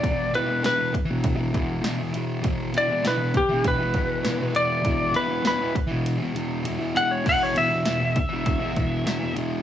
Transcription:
0.00 0.32 E2 medium
0.00 0.32 D5 loud
0.00 kick loud
0.00 ride medium
0.05 0.34 B2 medium
0.05 0.36 E3 medium
0.32 0.62 E2 medium
0.32 0.49 B2 medium
0.32 0.64 B4 medium
0.32 ride medium
0.37 0.46 E3 medium
0.46 0.66 E3 medium
0.50 0.64 B2 medium
0.62 0.93 E2 medium
0.62 0.80 B2 loud
0.62 0.94 B4 medium
0.62 snare loud
0.62 ride loud
0.67 0.76 E3 loud
0.76 0.93 E3 medium
0.81 0.92 B2 medium
0.93 muted distorted electric guitar stroke soft
0.93 kick medium
0.93 ride medium
1.05 1.35 E3 medium
1.10 1.39 B2 medium
1.24 kick loud
1.24 ride loud
1.36 1.56 E3 medium
1.40 1.54 B2 medium
1.52 1.82 E2 medium
1.52 1.83 B2 medium
1.52 kick medium
1.52 ride medium
1.57 1.86 E3 loud
1.82 2.11 E2 medium
1.82 2.01 B2 loud
1.82 snare loud
1.82 ride loud
1.86 1.98 E3 loud
1.98 2.16 E3 medium
2.02 2.13 B2 medium
2.12 2.42 E2 medium
2.12 2.43 B2 medium
2.12 ride medium
2.17 2.46 E3 medium
2.42 2.71 E2 medium
2.42 2.73 B2 loud
2.42 kick medium
2.42 ride medium
2.47 2.76 E3 medium
2.72 3.02 E2 medium
2.72 2.91 B2 medium
2.72 ride medium
2.76 2.87 E3 medium
2.76 3.05 D5 loud
2.88 3.06 E3 medium
2.92 3.04 B2 medium
3.02 3.33 E2 medium
3.02 3.21 B2 loud
3.02 snare loud
3.02 ride loud
3.06 3.17 E3 loud
3.06 3.35 B4 medium
3.17 3.34 E3 medium
3.22 3.33 B2 medium
3.33 3.65 G4 loud
3.33 muted distorted electric guitar stroke soft
3.33 kick medium
3.33 ride medium
3.49 3.82 B2 medium
3.49 3.78 E3 medium
3.64 4.54 B4 medium
3.64 kick loud
3.64 ride loud
3.78 3.98 E3 medium
3.83 3.95 B2 medium
3.94 4.23 E2 medium
3.94 4.24 B2 medium
3.94 kick medium
3.94 ride medium
3.99 4.28 E3 medium
4.23 4.52 E2 medium
4.23 4.40 B2 medium
4.23 snare loud
4.23 ride loud
4.28 4.37 E3 medium
4.37 4.53 B2 medium
4.37 4.56 E3 medium
4.52 4.81 E2 medium
4.52 4.83 B2 medium
4.52 5.14 D5 loud
4.52 ride medium
4.56 4.86 E3 medium
4.82 5.11 E2 medium
4.82 5.13 B2 medium
4.82 kick loud
4.82 ride medium
4.86 5.15 E3 loud
5.11 5.41 E2 medium
5.11 5.30 B2 medium
5.11 ride medium
5.16 5.27 E3 medium
5.16 5.45 B4 medium
5.27 5.46 E3 medium
5.31 5.43 B2 medium
5.41 5.74 E2 loud
5.41 5.61 B2 medium
5.41 snare loud
5.41 ride loud
5.46 5.57 E3 loud
5.46 5.75 B4 loud
5.57 5.75 E3 medium
5.62 5.74 B2 medium
5.74 muted distorted electric guitar stroke soft
5.74 kick loud
5.74 ride medium
5.87 6.18 E3 medium
5.92 6.22 B2 medium
6.06 ride loud
6.18 6.37 E3 medium
6.23 6.34 B2 medium
6.34 6.63 E2 medium
6.34 6.64 B2 medium
6.34 ride medium
6.38 6.67 E3 medium
6.63 6.94 E2 medium
6.63 6.81 B2 medium
6.63 ride loud
6.68 6.78 E3 medium
6.78 6.96 B2 medium
6.78 6.99 E3 medium
6.95 7.24 E2 medium
6.95 7.25 B2 medium
6.95 7.11 F#5 loud
6.95 ride medium
6.99 7.28 E3 medium
7.11 7.26 C#5 medium
7.24 7.54 E2 medium
7.24 7.55 B2 medium
7.24 kick loud
7.24 crash medium
7.29 7.58 E3 medium
7.29 7.42 F#5 loud
7.43 7.57 C#5 medium
7.54 7.83 E2 medium
7.54 7.73 B2 medium
7.54 9.34 E5 loud
7.54 ride medium
7.58 7.70 E3 medium
7.70 7.87 E3 medium
7.74 7.85 B2 medium
7.83 8.16 E2 medium
7.83 8.02 B2 loud
7.83 snare loud
7.83 ride loud
7.88 7.99 E3 loud
7.99 8.16 B2 medium
7.99 8.17 E3 medium
8.16 muted distorted electric guitar stroke soft
8.16 kick medium
8.16 ride medium
8.29 8.59 E3 medium
8.33 8.63 B2 soft
8.46 kick loud
8.46 ride loud
8.59 8.78 E3 medium
8.64 8.75 B2 medium
8.73 9.03 E2 medium
8.73 9.05 B2 medium
8.73 kick medium
8.73 ride medium
8.78 9.08 E3 medium
9.04 9.34 E2 medium
9.04 9.23 B2 medium
9.04 snare loud
9.04 ride loud
9.08 9.19 E3 medium
9.19 9.38 E3 medium
9.24 9.35 B2 medium
9.34 9.62 E2 medium
9.34 9.62 B2 medium
9.34 ride medium
9.39 9.62 E3 medium

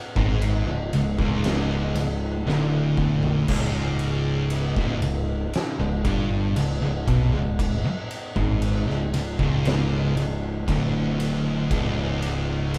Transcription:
0.16 0.64 G#1 medium
0.16 0.66 G#2 loud
0.16 kick loud
0.42 ride loud
0.67 0.91 C#1 medium
0.67 0.92 C#2 medium
0.93 1.17 C#1 medium
0.93 1.18 C#2 medium
0.93 ride medium
1.18 1.91 C#1 loud
1.18 1.94 C#2 loud
1.18 kick loud
1.44 snare loud
1.44 ride loud
1.95 2.43 C#1 medium
1.95 2.37 C#2 medium
1.95 ride medium
2.46 3.45 D1 loud
2.46 3.48 D2 loud
2.46 snare medium
2.97 kick medium
3.23 floor tom loud
3.48 4.73 C#1 loud
3.48 4.76 C#2 loud
3.48 kick loud
3.48 crash loud
3.99 ride medium
4.50 ride loud
4.76 5.01 D1 medium
4.76 5.01 D2 loud
4.76 kick loud
4.76 snare soft
5.02 5.50 C#1 medium
5.02 5.44 C#2 medium
5.02 ride medium
5.54 snare loud
5.54 ride loud
5.79 6.03 C#1 medium
5.79 6.04 C#2 medium
6.05 6.53 G1 loud
6.05 6.55 G2 loud
6.05 kick loud
6.05 ride medium
6.56 6.80 C#1 medium
6.56 6.81 C#2 medium
6.56 ride loud
6.81 7.05 C#1 medium
6.81 7.07 C#2 medium
7.07 7.32 B1 loud
7.07 7.32 B2 loud
7.07 kick loud
7.07 ride medium
7.32 7.81 C#1 medium
7.32 7.74 C#2 medium
7.59 kick loud
7.59 ride loud
7.84 muted picked electric bass stroke soft
7.84 muted distorted electric guitar stroke medium
8.11 ride medium
8.36 8.84 G#1 loud
8.36 8.86 G#2 loud
8.36 kick loud
8.62 ride loud
8.87 9.11 C#1 medium
8.87 9.12 C#2 medium
8.87 snare soft
9.12 9.37 C#1 medium
9.12 9.37 C#2 medium
9.12 ride medium
9.39 10.12 C#1 loud
9.39 10.15 C#2 loud
9.39 kick loud
9.65 snare loud
9.65 ride loud
10.15 10.63 C#1 medium
10.15 10.57 C#2 medium
10.15 ride medium
10.67 11.67 D1 loud
10.67 11.69 D2 loud
10.67 kick loud
10.67 ride loud
11.20 ride medium
11.71 12.78 C#1 loud
11.71 12.78 C#2 loud
11.71 kick loud
11.71 ride loud
12.22 ride medium
12.74 ride loud

